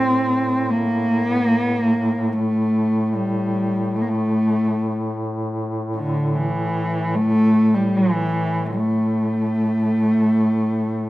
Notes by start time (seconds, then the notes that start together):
Already playing: A2 C4
0.70 A#3
1.28 B3
1.44 A#3
1.61 B3
1.76 A#3
2.33 A3
3.15 G3
3.96 A3
4.01 A#3
4.08 A3
5.96 D3
6.35 E3
7.16 A3
7.75 G3
7.97 E3
8.78 A3